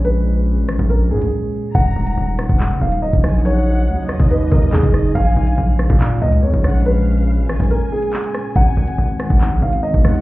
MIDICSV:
0, 0, Header, 1, 6, 480
1, 0, Start_track
1, 0, Tempo, 425532
1, 53, Time_signature, 4, 2, 24, 8
1, 11518, End_track
2, 0, Start_track
2, 0, Title_t, "Violin section"
2, 0, Program_c, 0, 48
2, 1973, Note_on_c, 0, 82, 111
2, 2424, Note_off_c, 0, 82, 0
2, 3651, Note_on_c, 0, 80, 80
2, 3880, Note_off_c, 0, 80, 0
2, 3894, Note_on_c, 0, 78, 115
2, 4570, Note_off_c, 0, 78, 0
2, 4614, Note_on_c, 0, 75, 94
2, 5768, Note_off_c, 0, 75, 0
2, 5813, Note_on_c, 0, 80, 110
2, 6264, Note_off_c, 0, 80, 0
2, 7494, Note_on_c, 0, 78, 83
2, 7721, Note_off_c, 0, 78, 0
2, 7733, Note_on_c, 0, 77, 97
2, 8410, Note_off_c, 0, 77, 0
2, 8453, Note_on_c, 0, 80, 91
2, 9608, Note_off_c, 0, 80, 0
2, 9652, Note_on_c, 0, 80, 104
2, 10104, Note_off_c, 0, 80, 0
2, 11333, Note_on_c, 0, 78, 84
2, 11518, Note_off_c, 0, 78, 0
2, 11518, End_track
3, 0, Start_track
3, 0, Title_t, "Grand piano"
3, 0, Program_c, 1, 0
3, 52, Note_on_c, 1, 71, 93
3, 967, Note_off_c, 1, 71, 0
3, 1010, Note_on_c, 1, 70, 88
3, 1197, Note_off_c, 1, 70, 0
3, 1250, Note_on_c, 1, 68, 80
3, 1928, Note_off_c, 1, 68, 0
3, 1972, Note_on_c, 1, 78, 104
3, 3127, Note_off_c, 1, 78, 0
3, 3175, Note_on_c, 1, 77, 85
3, 3360, Note_off_c, 1, 77, 0
3, 3410, Note_on_c, 1, 75, 82
3, 3862, Note_off_c, 1, 75, 0
3, 3892, Note_on_c, 1, 73, 104
3, 4807, Note_off_c, 1, 73, 0
3, 4857, Note_on_c, 1, 71, 81
3, 5041, Note_off_c, 1, 71, 0
3, 5092, Note_on_c, 1, 70, 84
3, 5278, Note_off_c, 1, 70, 0
3, 5331, Note_on_c, 1, 68, 88
3, 5783, Note_off_c, 1, 68, 0
3, 5808, Note_on_c, 1, 77, 109
3, 6965, Note_off_c, 1, 77, 0
3, 7013, Note_on_c, 1, 75, 92
3, 7199, Note_off_c, 1, 75, 0
3, 7248, Note_on_c, 1, 73, 84
3, 7701, Note_off_c, 1, 73, 0
3, 7735, Note_on_c, 1, 71, 87
3, 8649, Note_off_c, 1, 71, 0
3, 8693, Note_on_c, 1, 70, 92
3, 8879, Note_off_c, 1, 70, 0
3, 8935, Note_on_c, 1, 68, 85
3, 9611, Note_off_c, 1, 68, 0
3, 9656, Note_on_c, 1, 78, 104
3, 10809, Note_off_c, 1, 78, 0
3, 10857, Note_on_c, 1, 77, 82
3, 11041, Note_off_c, 1, 77, 0
3, 11088, Note_on_c, 1, 75, 90
3, 11518, Note_off_c, 1, 75, 0
3, 11518, End_track
4, 0, Start_track
4, 0, Title_t, "Ambient pad"
4, 0, Program_c, 2, 92
4, 0, Note_on_c, 2, 46, 82
4, 0, Note_on_c, 2, 56, 75
4, 0, Note_on_c, 2, 61, 91
4, 1935, Note_off_c, 2, 46, 0
4, 1935, Note_off_c, 2, 56, 0
4, 1935, Note_off_c, 2, 61, 0
4, 1971, Note_on_c, 2, 54, 76
4, 1972, Note_on_c, 2, 49, 86
4, 1972, Note_on_c, 2, 63, 93
4, 5774, Note_off_c, 2, 49, 0
4, 5774, Note_off_c, 2, 54, 0
4, 5774, Note_off_c, 2, 63, 0
4, 5812, Note_on_c, 2, 56, 79
4, 5812, Note_on_c, 2, 61, 95
4, 5813, Note_on_c, 2, 46, 85
4, 9614, Note_off_c, 2, 46, 0
4, 9614, Note_off_c, 2, 56, 0
4, 9614, Note_off_c, 2, 61, 0
4, 9652, Note_on_c, 2, 56, 78
4, 9652, Note_on_c, 2, 63, 93
4, 9653, Note_on_c, 2, 47, 85
4, 11518, Note_off_c, 2, 47, 0
4, 11518, Note_off_c, 2, 56, 0
4, 11518, Note_off_c, 2, 63, 0
4, 11518, End_track
5, 0, Start_track
5, 0, Title_t, "808-style bass"
5, 0, Program_c, 3, 38
5, 0, Note_on_c, 3, 34, 102
5, 653, Note_on_c, 3, 32, 101
5, 669, Note_off_c, 3, 34, 0
5, 773, Note_on_c, 3, 34, 98
5, 789, Note_off_c, 3, 32, 0
5, 887, Note_off_c, 3, 34, 0
5, 893, Note_on_c, 3, 34, 109
5, 1252, Note_on_c, 3, 46, 99
5, 1269, Note_off_c, 3, 34, 0
5, 1373, Note_on_c, 3, 34, 95
5, 1390, Note_off_c, 3, 46, 0
5, 1487, Note_off_c, 3, 34, 0
5, 1973, Note_on_c, 3, 27, 111
5, 2203, Note_off_c, 3, 27, 0
5, 2213, Note_on_c, 3, 27, 105
5, 2443, Note_off_c, 3, 27, 0
5, 2453, Note_on_c, 3, 27, 107
5, 2798, Note_off_c, 3, 27, 0
5, 2813, Note_on_c, 3, 27, 107
5, 3053, Note_on_c, 3, 30, 101
5, 3070, Note_off_c, 3, 27, 0
5, 3167, Note_off_c, 3, 30, 0
5, 3173, Note_on_c, 3, 27, 107
5, 3518, Note_off_c, 3, 27, 0
5, 3533, Note_on_c, 3, 27, 105
5, 3645, Note_off_c, 3, 27, 0
5, 3652, Note_on_c, 3, 34, 108
5, 4372, Note_on_c, 3, 39, 99
5, 4389, Note_off_c, 3, 34, 0
5, 4714, Note_off_c, 3, 39, 0
5, 4733, Note_on_c, 3, 39, 106
5, 5078, Note_off_c, 3, 39, 0
5, 5093, Note_on_c, 3, 39, 111
5, 5323, Note_off_c, 3, 39, 0
5, 5331, Note_on_c, 3, 39, 111
5, 5447, Note_off_c, 3, 39, 0
5, 5452, Note_on_c, 3, 30, 104
5, 5798, Note_off_c, 3, 30, 0
5, 5812, Note_on_c, 3, 34, 109
5, 6043, Note_off_c, 3, 34, 0
5, 6051, Note_on_c, 3, 34, 111
5, 6283, Note_off_c, 3, 34, 0
5, 6292, Note_on_c, 3, 34, 107
5, 6638, Note_off_c, 3, 34, 0
5, 6653, Note_on_c, 3, 46, 105
5, 6999, Note_off_c, 3, 46, 0
5, 7013, Note_on_c, 3, 37, 109
5, 7252, Note_on_c, 3, 41, 102
5, 7269, Note_off_c, 3, 37, 0
5, 7367, Note_off_c, 3, 41, 0
5, 7373, Note_on_c, 3, 34, 104
5, 7488, Note_off_c, 3, 34, 0
5, 7493, Note_on_c, 3, 34, 103
5, 8332, Note_on_c, 3, 32, 100
5, 8349, Note_off_c, 3, 34, 0
5, 8453, Note_on_c, 3, 34, 103
5, 8469, Note_off_c, 3, 32, 0
5, 8567, Note_off_c, 3, 34, 0
5, 8573, Note_on_c, 3, 34, 109
5, 8693, Note_off_c, 3, 34, 0
5, 9653, Note_on_c, 3, 32, 110
5, 9883, Note_off_c, 3, 32, 0
5, 9892, Note_on_c, 3, 32, 107
5, 10123, Note_off_c, 3, 32, 0
5, 10132, Note_on_c, 3, 32, 105
5, 10478, Note_off_c, 3, 32, 0
5, 10493, Note_on_c, 3, 32, 111
5, 10732, Note_on_c, 3, 35, 103
5, 10749, Note_off_c, 3, 32, 0
5, 10847, Note_off_c, 3, 35, 0
5, 10852, Note_on_c, 3, 32, 108
5, 11198, Note_off_c, 3, 32, 0
5, 11212, Note_on_c, 3, 32, 99
5, 11328, Note_off_c, 3, 32, 0
5, 11332, Note_on_c, 3, 39, 106
5, 11518, Note_off_c, 3, 39, 0
5, 11518, End_track
6, 0, Start_track
6, 0, Title_t, "Drums"
6, 54, Note_on_c, 9, 42, 82
6, 166, Note_off_c, 9, 42, 0
6, 773, Note_on_c, 9, 42, 84
6, 774, Note_on_c, 9, 37, 98
6, 886, Note_off_c, 9, 42, 0
6, 887, Note_off_c, 9, 37, 0
6, 893, Note_on_c, 9, 36, 103
6, 1006, Note_off_c, 9, 36, 0
6, 1013, Note_on_c, 9, 42, 72
6, 1126, Note_off_c, 9, 42, 0
6, 1373, Note_on_c, 9, 42, 83
6, 1486, Note_off_c, 9, 42, 0
6, 1973, Note_on_c, 9, 36, 124
6, 1973, Note_on_c, 9, 42, 84
6, 1973, Note_on_c, 9, 49, 106
6, 2085, Note_off_c, 9, 36, 0
6, 2086, Note_off_c, 9, 42, 0
6, 2086, Note_off_c, 9, 49, 0
6, 2332, Note_on_c, 9, 42, 96
6, 2445, Note_off_c, 9, 42, 0
6, 2692, Note_on_c, 9, 42, 94
6, 2693, Note_on_c, 9, 37, 103
6, 2805, Note_off_c, 9, 42, 0
6, 2806, Note_off_c, 9, 37, 0
6, 2813, Note_on_c, 9, 36, 107
6, 2926, Note_off_c, 9, 36, 0
6, 2933, Note_on_c, 9, 39, 122
6, 2933, Note_on_c, 9, 42, 75
6, 3045, Note_off_c, 9, 39, 0
6, 3045, Note_off_c, 9, 42, 0
6, 3293, Note_on_c, 9, 42, 84
6, 3406, Note_off_c, 9, 42, 0
6, 3533, Note_on_c, 9, 36, 101
6, 3646, Note_off_c, 9, 36, 0
6, 3653, Note_on_c, 9, 37, 102
6, 3653, Note_on_c, 9, 42, 70
6, 3713, Note_off_c, 9, 42, 0
6, 3713, Note_on_c, 9, 42, 68
6, 3766, Note_off_c, 9, 37, 0
6, 3773, Note_off_c, 9, 42, 0
6, 3773, Note_on_c, 9, 42, 66
6, 3833, Note_off_c, 9, 42, 0
6, 3833, Note_on_c, 9, 42, 65
6, 3893, Note_off_c, 9, 42, 0
6, 3893, Note_on_c, 9, 42, 82
6, 4006, Note_off_c, 9, 42, 0
6, 4613, Note_on_c, 9, 42, 82
6, 4614, Note_on_c, 9, 37, 102
6, 4725, Note_off_c, 9, 42, 0
6, 4726, Note_off_c, 9, 37, 0
6, 4733, Note_on_c, 9, 36, 112
6, 4846, Note_off_c, 9, 36, 0
6, 4852, Note_on_c, 9, 42, 75
6, 4965, Note_off_c, 9, 42, 0
6, 5093, Note_on_c, 9, 36, 102
6, 5206, Note_off_c, 9, 36, 0
6, 5212, Note_on_c, 9, 42, 88
6, 5325, Note_off_c, 9, 42, 0
6, 5332, Note_on_c, 9, 39, 116
6, 5445, Note_off_c, 9, 39, 0
6, 5452, Note_on_c, 9, 36, 98
6, 5452, Note_on_c, 9, 42, 98
6, 5565, Note_off_c, 9, 36, 0
6, 5565, Note_off_c, 9, 42, 0
6, 5572, Note_on_c, 9, 37, 100
6, 5572, Note_on_c, 9, 42, 88
6, 5685, Note_off_c, 9, 37, 0
6, 5685, Note_off_c, 9, 42, 0
6, 5812, Note_on_c, 9, 36, 123
6, 5812, Note_on_c, 9, 42, 83
6, 5924, Note_off_c, 9, 42, 0
6, 5925, Note_off_c, 9, 36, 0
6, 6172, Note_on_c, 9, 42, 92
6, 6285, Note_off_c, 9, 42, 0
6, 6532, Note_on_c, 9, 42, 92
6, 6533, Note_on_c, 9, 37, 103
6, 6645, Note_off_c, 9, 42, 0
6, 6646, Note_off_c, 9, 37, 0
6, 6653, Note_on_c, 9, 36, 108
6, 6766, Note_off_c, 9, 36, 0
6, 6772, Note_on_c, 9, 39, 124
6, 6772, Note_on_c, 9, 42, 80
6, 6885, Note_off_c, 9, 39, 0
6, 6885, Note_off_c, 9, 42, 0
6, 7132, Note_on_c, 9, 42, 83
6, 7245, Note_off_c, 9, 42, 0
6, 7373, Note_on_c, 9, 36, 98
6, 7486, Note_off_c, 9, 36, 0
6, 7493, Note_on_c, 9, 37, 101
6, 7493, Note_on_c, 9, 42, 69
6, 7553, Note_off_c, 9, 42, 0
6, 7553, Note_on_c, 9, 42, 68
6, 7605, Note_off_c, 9, 37, 0
6, 7612, Note_off_c, 9, 42, 0
6, 7612, Note_on_c, 9, 42, 65
6, 7672, Note_off_c, 9, 42, 0
6, 7672, Note_on_c, 9, 42, 68
6, 7732, Note_off_c, 9, 42, 0
6, 7732, Note_on_c, 9, 42, 83
6, 7845, Note_off_c, 9, 42, 0
6, 8453, Note_on_c, 9, 37, 103
6, 8453, Note_on_c, 9, 42, 52
6, 8533, Note_off_c, 9, 42, 0
6, 8533, Note_on_c, 9, 42, 72
6, 8566, Note_off_c, 9, 37, 0
6, 8573, Note_on_c, 9, 36, 109
6, 8613, Note_off_c, 9, 42, 0
6, 8613, Note_on_c, 9, 42, 92
6, 8686, Note_off_c, 9, 36, 0
6, 8692, Note_off_c, 9, 42, 0
6, 8692, Note_on_c, 9, 42, 77
6, 8805, Note_off_c, 9, 42, 0
6, 9052, Note_on_c, 9, 42, 86
6, 9165, Note_off_c, 9, 42, 0
6, 9173, Note_on_c, 9, 39, 115
6, 9285, Note_off_c, 9, 39, 0
6, 9293, Note_on_c, 9, 42, 98
6, 9405, Note_off_c, 9, 42, 0
6, 9413, Note_on_c, 9, 37, 100
6, 9413, Note_on_c, 9, 46, 60
6, 9526, Note_off_c, 9, 37, 0
6, 9526, Note_off_c, 9, 46, 0
6, 9652, Note_on_c, 9, 42, 83
6, 9653, Note_on_c, 9, 36, 127
6, 9765, Note_off_c, 9, 36, 0
6, 9765, Note_off_c, 9, 42, 0
6, 10012, Note_on_c, 9, 42, 94
6, 10125, Note_off_c, 9, 42, 0
6, 10373, Note_on_c, 9, 42, 93
6, 10374, Note_on_c, 9, 37, 100
6, 10486, Note_off_c, 9, 37, 0
6, 10486, Note_off_c, 9, 42, 0
6, 10493, Note_on_c, 9, 36, 112
6, 10606, Note_off_c, 9, 36, 0
6, 10612, Note_on_c, 9, 39, 121
6, 10612, Note_on_c, 9, 42, 77
6, 10725, Note_off_c, 9, 39, 0
6, 10725, Note_off_c, 9, 42, 0
6, 10972, Note_on_c, 9, 42, 83
6, 11085, Note_off_c, 9, 42, 0
6, 11213, Note_on_c, 9, 36, 102
6, 11325, Note_off_c, 9, 36, 0
6, 11332, Note_on_c, 9, 37, 102
6, 11332, Note_on_c, 9, 42, 70
6, 11392, Note_off_c, 9, 42, 0
6, 11392, Note_on_c, 9, 42, 69
6, 11445, Note_off_c, 9, 37, 0
6, 11452, Note_off_c, 9, 42, 0
6, 11452, Note_on_c, 9, 42, 67
6, 11518, Note_off_c, 9, 42, 0
6, 11518, End_track
0, 0, End_of_file